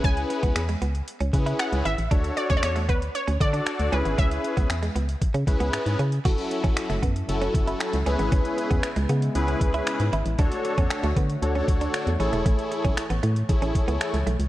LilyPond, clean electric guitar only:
\new Staff \with { instrumentName = "Clean electric guitar" } { \time 4/4 \key cis \phrygian \tempo 4 = 116 cis'16 r8 b16 r16 gis16 b16 r8 cis'16 r16 e'16 r8 e'16 r16 | d'16 r8 cis'16 r16 a16 b16 r8 cis'16 r16 d'16 r8 cis'16 b16 | cis'16 r8 b16 r16 gis16 b16 r8 cis'16 r16 b16 r8 cis'16 r16 | fis'16 r8 cis'16 r16 a16 b16 r8 cis'16 r16 e'16 r8 cis'16 b16 |
cis'16 r8 b16 r16 gis16 b16 r8 cis'16 r16 e'16 r8 e'16 r16 | d'16 r8 cis'16 r16 a16 b16 r8 cis'16 r16 d'16 r8 cis'16 a16 | a16 r8 cis'16 r16 b16 a16 r8 cis'16 r16 b16 r8 a16 r16 | }